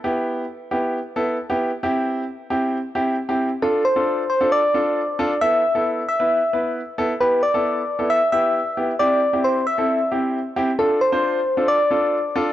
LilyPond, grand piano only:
\new Staff \with { instrumentName = "Grand piano" } { \time 4/4 \key d \dorian \tempo 4 = 134 <b e' g'>4 r8 <b e' g'>8 r8 <b e' a'>8 r16 <b e' g'>8 r16 | <c' e' g'>4 r8 <c' e' g'>8 r8 <c' e' g'>8 r16 <c' e' g'>8 r16 | <d' f' a'>8 r16 <d' f' a'>8 r8 <d' f' a'>8 r16 <d' f' a'>8 r8 <d' f' a'>16 r16 | <b e' a'>8 r16 <b e' a'>8 r8 <b e' b'>8 r16 <b e' b'>8 r8 <b e' a'>16 r16 |
<b e' g'>8 r16 <b e' a'>8 r8 <b e' a'>8 r16 <b e' g'>8 r8 <b e' g'>16 r16 | <c' e' g'>8 r16 <c' e' g'>8 r8 <c' e' a'>8 r16 <c' e' g'>8 r8 <c' e' g'>16 r16 | <d' f' a'>8 r16 <d' f' c''>8 r8 <d' f' a'>8 r16 <d' f' a'>8 r8 <d' f' a'>16 r16 | }